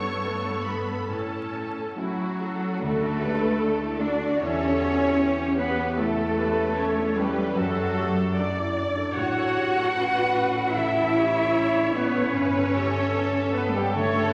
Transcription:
Already playing: grand piano G2, cello section G2, harp G2 A3 A4, viola section B3 A4, violin section C#5 C#6
0.24 grand piano A3 B3 A4, harp A4
0.65 harp B3, violin section B4 B5
1.08 grand piano A2, cello section A2, harp A2, viola section C#4 A4, violin section A4 A5
1.54 harp A3
1.94 cello section F#3, french horn section F#3, grand piano A3 C#4 A4, viola section E4, violin section F#4, flute F#4, harp A4
2.39 harp C#4, viola section A4
2.79 grand piano D2, double bass section D2, harp D3, cello section A3, french horn section A3, viola section F#4, violin section A4, flute A4
3.01 grand piano A4
3.21 harp D4, grand piano G4, viola section B4
3.42 grand piano A4
3.61 grand piano D4, viola section A4, harp A4
3.83 grand piano E4
3.99 french horn section D4, cello section D4, viola section F#4, harp F#4, violin section D5, flute D5
4.03 grand piano D4
4.22 grand piano A4
4.38 double bass section E2, grand piano E2, harp E3, french horn section C#4, cello section C#4, viola section A4, violin section C#5, flute C#5
4.60 grand piano G4
4.81 harp B3, grand piano F#4
5.00 grand piano G4
5.19 grand piano B3, viola section G4, harp G4
5.39 grand piano C#4
5.57 french horn section B3, cello section B3, grand piano B3, violin section B4, flute B4
5.78 grand piano G4
5.97 grand piano E2, harp E3, cello section A3, french horn section A3, viola section A4, flute A4, violin section A4
6.19 grand piano A4
6.36 harp C#4, grand piano G4, viola section B4
6.57 grand piano A4
6.77 grand piano C#4, harp A4, viola section C#5
6.98 grand piano D4
7.17 cello section G3, french horn section G3, grand piano C#4, harp C#4, violin section G4, flute G4, viola section B4
7.39 grand piano A4
7.55 double bass section F#2, grand piano F#2, harp F#2, cello section F#3, violin section F#4, flute F#4, viola section A4
7.59 french horn section F#3
7.78 grand piano A4
7.99 harp A3, grand piano G4
8.18 grand piano A4
8.37 grand piano D4, harp A4, viola section D5
8.59 grand piano E4
8.77 harp D4, grand piano D4
8.97 grand piano A4
9.14 double bass section A1, harp A2, grand piano A2, cello section F#4, french horn section F#4, viola section C#5, flute F#5, violin section F#5
9.38 grand piano A4
9.56 harp A3, grand piano G4
9.76 grand piano A4
9.95 grand piano C#4, harp A4, viola section B4
10.16 grand piano D4
10.36 grand piano C#4, harp C#4
10.55 grand piano A4
10.75 harp E3, grand piano E3, cello section E4, french horn section E4, viola section A4, violin section E5, flute E5
10.98 grand piano A4
11.16 harp A3, grand piano G4, viola section C#5
11.36 grand piano A4
11.57 grand piano C#4
11.76 grand piano D4
11.93 french horn section B3, cello section B3, harp C#4, violin section B4, flute B4
11.97 grand piano C#4
12.17 grand piano A4
12.33 double bass section G1, harp G2, grand piano G2, cello section C#4, french horn section C#4, viola section B4, violin section C#5, flute C#5
12.56 grand piano A4
12.74 harp A3, grand piano G4, viola section A4
12.96 grand piano A4
13.14 grand piano B3, harp A4
13.37 grand piano C#4
13.52 cello section B3, french horn section B3, harp B3, violin section B4, flute B4
13.58 grand piano B3
13.72 cello section G3, french horn section G3, violin section G4, flute G4
13.77 grand piano A4
13.91 harp D3, cello section A3, french horn section A3, violin section A4, flute A4, viola section C#5
13.96 grand piano D3
14.16 grand piano A4

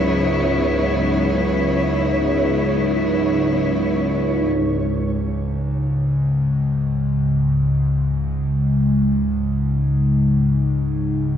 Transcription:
Already playing: synth drone C#2 G#2, cello section C#3 F#3 B3 E4, synth texture C#5
4.47 synth drone C#2 G#2

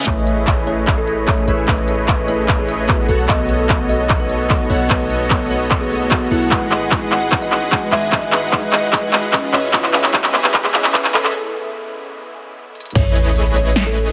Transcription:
0.05 808-style bass A1, synth keys A3 G#4 B4 C#5, analog synth pad A3 C#4 G#4, kalimba C#5, kick, clap, closed hi-hat, riser
0.09 synth keys D#5
0.27 closed hi-hat
0.47 kick, clap, closed hi-hat
0.67 kalimba C#5, closed hi-hat
0.87 kick, clap, closed hi-hat
0.98 kalimba A4
1.07 closed hi-hat
1.27 synth keys A3 G#4 B4 C#5 E5, kalimba C#5, kick, clap, closed hi-hat
1.48 808-style bass A1, supersaw synth A3 E4 G#4 B4 C#5 E5, kalimba B4, closed hi-hat
1.66 808-style bass A1, synth keys A3 G#4 B4 C#5 D#5, kalimba B4, kick, clap, closed hi-hat
1.88 closed hi-hat
2.08 kick, clap, closed hi-hat
2.28 kalimba B4, closed hi-hat
2.48 kick, clap, closed hi-hat
2.59 kalimba G#4
2.69 closed hi-hat
2.88 synth keys B3 F#4 A4 F#5, kalimba B4, kick, clap, closed hi-hat
3.09 808-style bass B1, analog synth pad B3 D#4, supersaw synth B3 F#4 A4 C#5 F#5, kalimba A4, closed hi-hat
3.27 808-style bass B1, synth keys B3 F#4 A4, supersaw synth B3 A4 C#5, kalimba D#5, kick, clap, closed hi-hat
3.31 synth keys D#5
3.49 closed hi-hat
3.69 kick, clap, closed hi-hat
3.89 kalimba D#5, closed hi-hat
4.09 kick, clap, closed hi-hat
4.20 kalimba B4
4.30 closed hi-hat
4.49 synth keys B3 F#4 A4 F#5, kalimba D#5, kick, clap, closed hi-hat
4.70 808-style bass B1, supersaw synth B3 F#4 A4 C#5 F#5, kalimba C#5, closed hi-hat
4.88 808-style bass B1, synth keys B3 F#4 A4 D#5, supersaw synth B3 F#4 A4 C#5 D#5, kalimba B4, kick, clap, closed hi-hat
5.10 closed hi-hat
5.30 kick, clap, closed hi-hat
5.50 kalimba B4, closed hi-hat
5.71 kick, clap, closed hi-hat
5.81 kalimba G#4
5.91 closed hi-hat
6.10 synth keys B3 F#4 A4 F#5, kalimba F#4, kick, clap, closed hi-hat
6.31 808-style bass B1, supersaw synth B3 F#4 A4 C#5 F#5, kalimba E4, closed hi-hat
6.49 808-style bass G#1, synth keys G#3 G#4 B4, analog synth pad G#3 D#4 F#4 B4, supersaw synth G#3 B4 D#5, kalimba F#5, kick, clap, closed hi-hat
6.53 synth keys F#5
6.71 clap, closed hi-hat
6.91 kick, clap, closed hi-hat
7.12 kalimba F#5, clap, open hi-hat
7.32 kick, clap, closed hi-hat
7.42 kalimba D#5
7.52 clap, closed hi-hat
7.71 synth keys G#3 G#4 B4 G#5, kalimba F#5, kick, clap, closed hi-hat
7.92 808-style bass G#1, supersaw synth G#3 G#4 B4 D#5 G#5, kalimba E5, clap, closed hi-hat
8.10 808-style bass G#1, synth keys G#3 G#4 B4, supersaw synth G#3 G#4 B4 D#5 F#5, kalimba D#5, kick, clap, closed hi-hat
8.14 synth keys F#5
8.32 clap, closed hi-hat
8.52 kick, clap, closed hi-hat
8.73 kalimba D#5, clap, open hi-hat
8.93 kick, clap, closed hi-hat
9.03 kalimba B4
9.13 clap, closed hi-hat
9.32 synth keys C#4 B4 D#5 E5, kalimba D#5, kick, clap, closed hi-hat
9.53 808-style bass C#2, analog synth pad C#3 B3 E4, supersaw synth C#4 G#4 B4 D#5 E5, kalimba C#5, clap, closed hi-hat
9.71 808-style bass C#2, synth keys C#4 B4 D#6, supersaw synth C#4, kalimba B4, kick, clap, closed hi-hat
9.75 synth keys E4
9.84 clap
9.93 clap, closed hi-hat
10.04 clap
10.14 kick, clap, closed hi-hat
10.24 clap
10.34 kalimba B4, clap, open hi-hat
10.44 clap
10.54 kick, clap, closed hi-hat
10.64 kalimba G#4, clap
10.74 clap, closed hi-hat
10.84 clap
10.93 synth keys C#4 B4 D#5 E5, kalimba B4, kick, clap, closed hi-hat
11.04 clap
11.14 808-style bass C#2, supersaw synth C#4 G#4 B4 D#5 E5, kalimba A4, clap, closed hi-hat
11.25 clap
12.75 closed hi-hat
12.80 closed hi-hat
12.86 closed hi-hat
12.90 closed hi-hat
12.95 808-style bass A1, analog synth pad A3 C#4 G#4, supersaw synth A3 E4 G#4 B4 C#5 D#5, kalimba C#5, kick, closed hi-hat, crash, sub drop
13.16 closed hi-hat
13.36 closed hi-hat
13.46 closed hi-hat
13.56 kalimba C#5, closed hi-hat
13.76 snare, closed hi-hat
13.86 kalimba A4
13.96 closed hi-hat

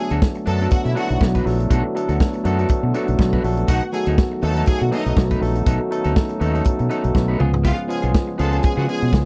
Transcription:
Already playing: french horn section D3 A3 B3 F#4, tine electric piano F#3 A3 B3 D4 A4
0.10 fingered electric bass D2, clean electric guitar D4 F#4 A4, closed hi-hat
0.22 kick, snare
0.35 muted clean electric guitar stroke, closed hi-hat
0.46 fingered electric bass F#2, tine electric piano F#3 A3 B3 D4 A4, clean electric guitar D4 F#4 A4, string section A4 A5, closed hi-hat
0.60 clean electric guitar D4 F#4 A4, closed hi-hat
0.71 string section F#4 F#5, muted clean electric guitar stroke, kick, closed hi-hat
0.85 fingered electric bass B2, string section E4 E5, muted clean electric guitar stroke, closed hi-hat
0.95 tine electric piano F#3 A3 B3 D4 E4, clean electric guitar D4 F#4 A4, string section F#4 F#5, closed hi-hat
1.09 fingered electric bass B1, muted clean electric guitar stroke, closed hi-hat
1.21 fingered electric bass B1, muted clean electric guitar stroke, kick, snare
1.35 clean electric guitar D4 F#4 B4, kick, closed hi-hat
1.45 fingered electric bass A#1, tine electric piano F#3 A3 B3 D4 A4, muted clean electric guitar stroke, snare, open hi-hat
1.60 muted clean electric guitar stroke, closed hi-hat
1.70 fingered electric bass B1, clean electric guitar D4 F#4 A4, kick, closed hi-hat
1.84 muted clean electric guitar stroke
1.95 tine electric piano F#3 A3 B3 D4 A4, muted clean electric guitar stroke, closed hi-hat
2.08 fingered electric bass D2, clean electric guitar D4 F#4 A4, closed hi-hat
2.20 muted clean electric guitar stroke, kick, snare
2.33 muted clean electric guitar stroke, closed hi-hat
2.44 fingered electric bass F#2, tine electric piano F#3 A3 B3 D4 A4, clean electric guitar D4 F#4 A4, closed hi-hat
2.59 clean electric guitar D4 F#4 A4, closed hi-hat
2.68 muted clean electric guitar stroke, kick, closed hi-hat
2.83 fingered electric bass B2, muted clean electric guitar stroke
2.94 tine electric piano F#3 A3 B3 D4 A4, clean electric guitar D4 F#4 A4, closed hi-hat
3.08 fingered electric bass B1, muted clean electric guitar stroke, closed hi-hat
3.19 fingered electric bass B1, muted clean electric guitar stroke, kick, snare
3.33 clean electric guitar D4 F#4 B4, kick
3.44 fingered electric bass A#1, tine electric piano F#3 A3 B3 D4 A4, muted clean electric guitar stroke, open hi-hat
3.57 muted clean electric guitar stroke, closed hi-hat
3.68 fingered electric bass B1, french horn section D#3, clean electric guitar B3 D#4 A4, string section F#4 F#5, kick, closed hi-hat
3.83 muted clean electric guitar stroke
3.92 tine electric piano F#3 A3 B3 D#4 A4, string section G#4 G#5, muted clean electric guitar stroke, closed hi-hat
4.06 fingered electric bass D2, clean electric guitar B3 D#4 A4, closed hi-hat
4.18 kick, snare
4.32 muted clean electric guitar stroke
4.42 fingered electric bass D#2, tine electric piano F#3 A3 B3 D#4 A4, clean electric guitar B3 D#4 A4, string section A4 A5, closed hi-hat
4.56 clean electric guitar B3 D#4 A4, closed hi-hat
4.66 string section G#4 G#5, muted clean electric guitar stroke, kick, closed hi-hat
4.81 fingered electric bass B2, string section F#4 F#5, muted clean electric guitar stroke, closed hi-hat
4.91 tine electric piano F#3 A3 B3 D#4 A4, clean electric guitar B3 D#4 A4, string section D#4 D#5, closed hi-hat
5.06 fingered electric bass B1, muted clean electric guitar stroke, closed hi-hat
5.17 fingered electric bass B1, muted clean electric guitar stroke, kick, snare
5.31 clean electric guitar B3 D#4 B4, kick, closed hi-hat
5.41 fingered electric bass A#1, tine electric piano F#3 A3 B3 D#4 A4, muted clean electric guitar stroke, snare, open hi-hat
5.55 muted clean electric guitar stroke, closed hi-hat
5.66 fingered electric bass B1, clean electric guitar B3 D#4 A4, french horn section C#4, kick, closed hi-hat
5.80 muted clean electric guitar stroke
5.91 tine electric piano F#3 A3 B3 D#4 A4, muted clean electric guitar stroke, closed hi-hat
6.04 fingered electric bass D2, clean electric guitar B3 D#4 A4, closed hi-hat
6.16 kick, snare
6.29 muted clean electric guitar stroke, closed hi-hat
6.40 fingered electric bass D#2, tine electric piano F#3 A3 B3 D#4 A4, clean electric guitar B3 D#4 A4, closed hi-hat
6.54 clean electric guitar B3 D#4 A4, closed hi-hat
6.64 muted clean electric guitar stroke, kick, closed hi-hat
6.79 fingered electric bass B2, muted clean electric guitar stroke, closed hi-hat
6.90 tine electric piano F#3 A3 B3 D#4 A4, clean electric guitar B3 D#4 A4, closed hi-hat
7.04 fingered electric bass B1, muted clean electric guitar stroke, closed hi-hat
7.15 fingered electric bass B1, muted clean electric guitar stroke, kick, snare
7.28 clean electric guitar B3 D#4 B4
7.39 fingered electric bass C#2, french horn section C#3 B3 F4 G#4, tine electric piano F3 G#3 B3 C#4 G#4, clean electric guitar B3 F4 G#4, mid tom
7.53 muted clean electric guitar stroke, floor tom
7.64 clean electric guitar B3 F4 G#4, string section F4 F5, kick, closed hi-hat
7.78 muted clean electric guitar stroke
7.88 tine electric piano F3 G#3 B3 C#4 G#4, string section G#4 G#5, muted clean electric guitar stroke, closed hi-hat
8.02 fingered electric bass B1, clean electric guitar B3 F4 G#4, closed hi-hat
8.13 muted clean electric guitar stroke, kick, snare
8.27 muted clean electric guitar stroke
8.38 fingered electric bass C#2, tine electric piano F3 G#3 B3 C#4 G#4, clean electric guitar B3 F4 G#4, string section A4 A5, closed hi-hat
8.52 clean electric guitar B3 F4 G#4, closed hi-hat
8.63 string section G#4 G#5, muted clean electric guitar stroke, kick, closed hi-hat
8.77 fingered electric bass C#3, clean electric guitar B3 F4 G#4, string section F#4 F#5
8.88 tine electric piano F3 G#3 B3 C#4 G#4, string section G#4 G#5, muted clean electric guitar stroke, closed hi-hat
9.02 fingered electric bass B2, muted clean electric guitar stroke, closed hi-hat
9.13 fingered electric bass C#2, muted clean electric guitar stroke, kick, snare

